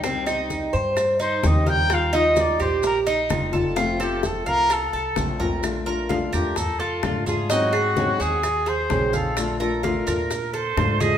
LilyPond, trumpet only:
\new Staff \with { instrumentName = "Trumpet" } { \time 4/4 \key bes \major \tempo 4 = 129 r2 r8 c''8 ees''8 g''8 | f''8 ees''8 d''8 c''8 bes'8 r4. | r8 g'8 a'8 bes'8 a'4.~ a'16 r16 | r4. g'8 a'8 f'4 f'8 |
ges'4. aes'4 c''4 r8 | r1 | }